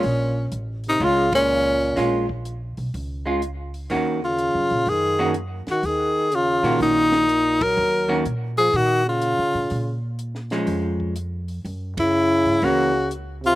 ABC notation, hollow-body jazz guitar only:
X:1
M:4/4
L:1/8
Q:"Swing" 1/4=124
K:Bbm
V:1 name="Hollow-body jazz guitar"
z4 [A,DF]3 z | [A,DF] z4 [A,DF] z2 | [E,B,DG] z4 [E,B,DG] z2 | z3 [E,B,DG]3 z2 |
z [E,B,DG] z6 | z3 [F,A,D]3 z2 | z4 [_F,B,D] z3 |]